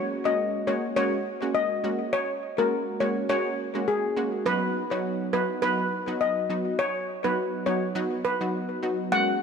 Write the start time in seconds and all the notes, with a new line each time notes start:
Already playing: G#3 A#3 C#4 F#4
0.25 G#3 A#3 C#4 F#4 D#5
0.67 G#3 A#3 C#4 F#4 C#5
0.96 G#3 A#3 C#4 F#4 C#5
1.42 G#3 A#3 C#4 F#4
1.55 D#5
1.84 G#3 A#3 C#4 F#4
2.13 C#5
2.58 G#3 A#3 C#4 F#4 A#4
3.00 G#3 A#3 C#4 F#4 C#5
3.29 G#3 A#3 C#4 F#4 C#5
3.75 G#3 A#3 C#4 F#4
3.88 G#4
4.17 G#3 A#3 C#4 F#4
4.46 F#3 B3 D#4 F#4 B4
4.91 F#3 B3 D#4 F#4 C#5
5.33 F#3 B3 D#4 F#4 B4
5.62 F#3 B3 D#4 F#4 B4
6.07 F#3 B3 D#4 F#4
6.21 D#5
6.50 F#3 B3 D#4 F#4
6.79 C#5
7.24 F#3 B3 D#4 F#4 B4
7.66 F#3 B3 D#4 F#4 C#5
7.95 F#3 B3 D#4 F#4
8.25 B4
8.41 F#3 B3 D#4 F#4
8.82 F#3 B3 D#4 F#4
9.12 G#3 A#3 C#4 F#4 F#5